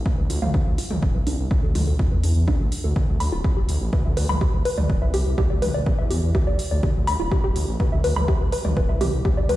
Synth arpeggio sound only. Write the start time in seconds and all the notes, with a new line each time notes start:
0.06 F4
0.18 B4
0.30 F4
0.42 F5
0.54 D4
0.78 F4
0.91 A4
1.02 F4
1.15 B4
1.27 D4
1.51 D4
1.63 A4
1.75 F4
1.87 A4
1.99 F4
2.12 B4
2.24 D4
2.48 D4
2.60 A4
2.84 A4
2.96 G4
3.20 B5
3.32 F4
3.44 G4
3.57 G4
3.93 B4
4.05 E5
4.17 B4
4.29 B5
4.41 G4
4.65 B4
4.78 D5
4.90 B4
5.02 E5
5.14 G4
5.38 G4
5.50 D5
5.62 B4
5.74 D5
5.86 B4
5.99 E5
6.10 G4
6.35 G4
6.47 D5
6.71 D5
6.83 G4
7.07 B5
7.20 F4
7.32 G4
7.44 G4
7.80 B4
7.92 E5
8.04 B4
8.16 B5
8.28 G4
8.52 B4
8.65 D5
8.77 B4
8.89 E5
9.01 G4
9.25 G4
9.37 D5
9.49 B4